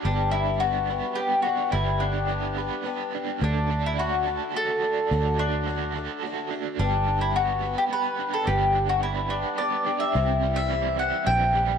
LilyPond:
<<
  \new Staff \with { instrumentName = "Reed electric piano" } { \time 3/4 \key g \major \tempo 4 = 107 r2. | r2. | r2. | r2. |
r2. | r2. | <g' c'' e''>4 <g' c'' e''>4 <g' c'' e''>4 | }
  \new Staff \with { instrumentName = "Mandolin" } { \time 3/4 \key g \major d'8 e'8 fis'4 g'8 fis'8 | e'8 d'2 r8 | d'8. e'16 fis'4 a'4~ | a'8 d'2 r8 |
d'8. e'16 fis'8. g'16 b'8. a'16 | g'8. fis'16 e'8 d'8 d''8. e''16~ | e''8. e''8. fis''8 g''4 | }
  \new Staff \with { instrumentName = "Overdriven electric guitar" } { \time 3/4 \key g \major g8 d'8 b8 b'8 b8 d'8 | g8 d'8 b8 b'8 b8 d'8 | d8 d'8 fis'8 a'8 fis'8 d'8 | d8 d'8 fis'8 a'8 fis'8 d'8 |
g8 d'8 b8 b'8 b8 d'8 | g8 d'8 b8 b'8 b8 d'8 | c8 g8 e8 e'8 e8 g8 | }
  \new Staff \with { instrumentName = "Twelve-string acoustic guitar" } { \time 3/4 \key g \major <g, d g b d' g'>4 <g b d' g'>8 <g b d' g'>8 <g b d' g'>8 <g b d' g'>8 | <g, d g b d' g'>4 <g b d' g'>8 <g b d' g'>8 <g b d' g'>4 | <d fis a d' fis'>4 <fis a d' fis'>8 <a d' fis'>8 <fis a d' fis'>4 | <d fis a d' fis'>4 <fis a d' fis'>8 <a d' fis'>8 <fis a d' fis'>8 <a d' fis'>8 |
<g, d g b d' g'>4 <g b d' g'>8 <g b d' g'>8 <g b d' g'>4 | <g, d g b d' g'>4 <g b d' g'>8 <g b d' g'>8 <g b d' g'>8 <g b d' g'>8 | <c e c' e' g'>4 <e c' e' g'>4 <e c' e' g'>8 <c' e' g'>8 | }
  \new Staff \with { instrumentName = "Fingered electric bass" } { \clef bass \time 3/4 \key g \major g,,2 r4 | g,,2 r4 | d,2 r4 | d,2 r4 |
g,,2 r4 | g,,2 r4 | c,2 bes,,4 | }
>>